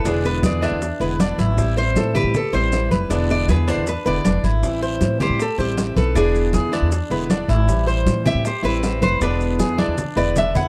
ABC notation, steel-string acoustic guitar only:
X:1
M:4/4
L:1/8
Q:1/4=157
K:Am
V:1 name="Steel-string acoustic guitar"
[B,,D,^G,B,E]3 [D,G,B,E] z [D,G,B,E] [D,G,B,E]2 | [E,G,CE]3 [G,CE] z [G,CE] [E,G,CE]2 | [B,,D,^G,B,E]3 [D,G,B,E] z [D,G,B,E] [G,B,E]2 | [E,G,CE]3 [G,CE] z [G,CE] [E,G,CE]2 |
[B,,D,^G,B,E]3 [D,G,B,E] z [D,G,B,E] [D,G,B,E]2 | [E,G,CE]3 [G,CE] z [G,CE] [E,G,CE]2 | [B,,D,^G,B,E]3 [D,G,B,E] z [D,G,B,E] [D,G,B,E]2 |]